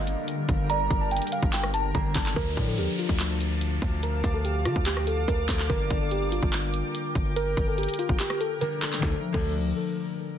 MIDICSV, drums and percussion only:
0, 0, Header, 1, 2, 480
1, 0, Start_track
1, 0, Key_signature, -1, "minor"
1, 0, Tempo, 416667
1, 803, Time_signature, 4, 2, 24, 8
1, 11960, End_track
2, 0, Start_track
2, 0, Title_t, "Drums"
2, 81, Note_on_c, 9, 42, 84
2, 196, Note_off_c, 9, 42, 0
2, 322, Note_on_c, 9, 42, 76
2, 437, Note_off_c, 9, 42, 0
2, 561, Note_on_c, 9, 36, 101
2, 562, Note_on_c, 9, 42, 72
2, 676, Note_off_c, 9, 36, 0
2, 677, Note_off_c, 9, 42, 0
2, 802, Note_on_c, 9, 42, 66
2, 918, Note_off_c, 9, 42, 0
2, 1043, Note_on_c, 9, 36, 100
2, 1043, Note_on_c, 9, 42, 71
2, 1158, Note_off_c, 9, 36, 0
2, 1158, Note_off_c, 9, 42, 0
2, 1282, Note_on_c, 9, 42, 46
2, 1342, Note_off_c, 9, 42, 0
2, 1342, Note_on_c, 9, 42, 53
2, 1402, Note_off_c, 9, 42, 0
2, 1402, Note_on_c, 9, 42, 65
2, 1462, Note_off_c, 9, 42, 0
2, 1462, Note_on_c, 9, 42, 72
2, 1522, Note_off_c, 9, 42, 0
2, 1522, Note_on_c, 9, 42, 74
2, 1637, Note_off_c, 9, 42, 0
2, 1643, Note_on_c, 9, 36, 90
2, 1758, Note_off_c, 9, 36, 0
2, 1762, Note_on_c, 9, 42, 90
2, 1763, Note_on_c, 9, 39, 109
2, 1877, Note_off_c, 9, 42, 0
2, 1878, Note_off_c, 9, 39, 0
2, 1883, Note_on_c, 9, 37, 99
2, 1998, Note_off_c, 9, 37, 0
2, 2002, Note_on_c, 9, 42, 84
2, 2117, Note_off_c, 9, 42, 0
2, 2243, Note_on_c, 9, 42, 77
2, 2244, Note_on_c, 9, 36, 103
2, 2358, Note_off_c, 9, 42, 0
2, 2359, Note_off_c, 9, 36, 0
2, 2481, Note_on_c, 9, 36, 105
2, 2482, Note_on_c, 9, 42, 72
2, 2482, Note_on_c, 9, 46, 74
2, 2483, Note_on_c, 9, 39, 96
2, 2563, Note_off_c, 9, 42, 0
2, 2563, Note_on_c, 9, 42, 57
2, 2597, Note_off_c, 9, 36, 0
2, 2598, Note_off_c, 9, 46, 0
2, 2599, Note_off_c, 9, 39, 0
2, 2604, Note_on_c, 9, 39, 68
2, 2643, Note_off_c, 9, 42, 0
2, 2643, Note_on_c, 9, 42, 43
2, 2720, Note_off_c, 9, 39, 0
2, 2723, Note_off_c, 9, 42, 0
2, 2723, Note_on_c, 9, 36, 120
2, 2723, Note_on_c, 9, 42, 67
2, 2838, Note_off_c, 9, 36, 0
2, 2838, Note_off_c, 9, 42, 0
2, 2963, Note_on_c, 9, 36, 99
2, 2963, Note_on_c, 9, 42, 70
2, 3078, Note_off_c, 9, 36, 0
2, 3079, Note_off_c, 9, 42, 0
2, 3203, Note_on_c, 9, 42, 69
2, 3318, Note_off_c, 9, 42, 0
2, 3442, Note_on_c, 9, 42, 73
2, 3557, Note_off_c, 9, 42, 0
2, 3562, Note_on_c, 9, 36, 88
2, 3678, Note_off_c, 9, 36, 0
2, 3681, Note_on_c, 9, 42, 86
2, 3682, Note_on_c, 9, 39, 106
2, 3796, Note_off_c, 9, 42, 0
2, 3797, Note_off_c, 9, 39, 0
2, 3921, Note_on_c, 9, 42, 78
2, 4036, Note_off_c, 9, 42, 0
2, 4162, Note_on_c, 9, 42, 75
2, 4277, Note_off_c, 9, 42, 0
2, 4401, Note_on_c, 9, 36, 98
2, 4402, Note_on_c, 9, 42, 68
2, 4516, Note_off_c, 9, 36, 0
2, 4517, Note_off_c, 9, 42, 0
2, 4643, Note_on_c, 9, 42, 65
2, 4758, Note_off_c, 9, 42, 0
2, 4883, Note_on_c, 9, 36, 96
2, 4884, Note_on_c, 9, 42, 72
2, 4998, Note_off_c, 9, 36, 0
2, 4999, Note_off_c, 9, 42, 0
2, 5123, Note_on_c, 9, 42, 69
2, 5238, Note_off_c, 9, 42, 0
2, 5361, Note_on_c, 9, 37, 67
2, 5361, Note_on_c, 9, 42, 75
2, 5476, Note_off_c, 9, 37, 0
2, 5477, Note_off_c, 9, 42, 0
2, 5482, Note_on_c, 9, 36, 91
2, 5597, Note_off_c, 9, 36, 0
2, 5601, Note_on_c, 9, 42, 89
2, 5602, Note_on_c, 9, 39, 105
2, 5716, Note_off_c, 9, 42, 0
2, 5717, Note_off_c, 9, 39, 0
2, 5723, Note_on_c, 9, 37, 96
2, 5838, Note_off_c, 9, 37, 0
2, 5842, Note_on_c, 9, 42, 81
2, 5957, Note_off_c, 9, 42, 0
2, 6082, Note_on_c, 9, 42, 75
2, 6084, Note_on_c, 9, 36, 100
2, 6198, Note_off_c, 9, 42, 0
2, 6199, Note_off_c, 9, 36, 0
2, 6321, Note_on_c, 9, 36, 98
2, 6323, Note_on_c, 9, 46, 73
2, 6324, Note_on_c, 9, 39, 94
2, 6437, Note_off_c, 9, 36, 0
2, 6438, Note_off_c, 9, 46, 0
2, 6439, Note_off_c, 9, 39, 0
2, 6444, Note_on_c, 9, 39, 66
2, 6559, Note_off_c, 9, 39, 0
2, 6563, Note_on_c, 9, 36, 122
2, 6563, Note_on_c, 9, 42, 68
2, 6678, Note_off_c, 9, 36, 0
2, 6678, Note_off_c, 9, 42, 0
2, 6803, Note_on_c, 9, 36, 98
2, 6803, Note_on_c, 9, 42, 71
2, 6918, Note_off_c, 9, 36, 0
2, 6918, Note_off_c, 9, 42, 0
2, 7042, Note_on_c, 9, 42, 69
2, 7157, Note_off_c, 9, 42, 0
2, 7281, Note_on_c, 9, 42, 75
2, 7397, Note_off_c, 9, 42, 0
2, 7403, Note_on_c, 9, 36, 91
2, 7518, Note_off_c, 9, 36, 0
2, 7520, Note_on_c, 9, 42, 88
2, 7521, Note_on_c, 9, 39, 110
2, 7636, Note_off_c, 9, 39, 0
2, 7636, Note_off_c, 9, 42, 0
2, 7761, Note_on_c, 9, 42, 84
2, 7876, Note_off_c, 9, 42, 0
2, 8002, Note_on_c, 9, 42, 72
2, 8117, Note_off_c, 9, 42, 0
2, 8242, Note_on_c, 9, 36, 104
2, 8242, Note_on_c, 9, 42, 70
2, 8357, Note_off_c, 9, 36, 0
2, 8357, Note_off_c, 9, 42, 0
2, 8483, Note_on_c, 9, 42, 67
2, 8598, Note_off_c, 9, 42, 0
2, 8723, Note_on_c, 9, 36, 100
2, 8723, Note_on_c, 9, 42, 71
2, 8838, Note_off_c, 9, 36, 0
2, 8838, Note_off_c, 9, 42, 0
2, 8963, Note_on_c, 9, 42, 45
2, 9023, Note_off_c, 9, 42, 0
2, 9023, Note_on_c, 9, 42, 54
2, 9083, Note_off_c, 9, 42, 0
2, 9083, Note_on_c, 9, 42, 65
2, 9143, Note_off_c, 9, 42, 0
2, 9143, Note_on_c, 9, 42, 74
2, 9203, Note_off_c, 9, 42, 0
2, 9203, Note_on_c, 9, 42, 72
2, 9318, Note_off_c, 9, 42, 0
2, 9323, Note_on_c, 9, 36, 89
2, 9438, Note_off_c, 9, 36, 0
2, 9441, Note_on_c, 9, 42, 88
2, 9442, Note_on_c, 9, 39, 108
2, 9557, Note_off_c, 9, 39, 0
2, 9557, Note_off_c, 9, 42, 0
2, 9562, Note_on_c, 9, 37, 99
2, 9677, Note_off_c, 9, 37, 0
2, 9682, Note_on_c, 9, 42, 81
2, 9797, Note_off_c, 9, 42, 0
2, 9923, Note_on_c, 9, 42, 76
2, 10038, Note_off_c, 9, 42, 0
2, 10163, Note_on_c, 9, 42, 71
2, 10163, Note_on_c, 9, 46, 75
2, 10164, Note_on_c, 9, 39, 90
2, 10243, Note_off_c, 9, 42, 0
2, 10243, Note_on_c, 9, 42, 55
2, 10278, Note_off_c, 9, 46, 0
2, 10279, Note_off_c, 9, 39, 0
2, 10283, Note_on_c, 9, 39, 64
2, 10323, Note_off_c, 9, 42, 0
2, 10323, Note_on_c, 9, 42, 44
2, 10398, Note_off_c, 9, 39, 0
2, 10402, Note_on_c, 9, 36, 108
2, 10402, Note_on_c, 9, 38, 89
2, 10438, Note_off_c, 9, 42, 0
2, 10517, Note_off_c, 9, 38, 0
2, 10518, Note_off_c, 9, 36, 0
2, 10762, Note_on_c, 9, 36, 106
2, 10762, Note_on_c, 9, 49, 90
2, 10877, Note_off_c, 9, 49, 0
2, 10878, Note_off_c, 9, 36, 0
2, 11960, End_track
0, 0, End_of_file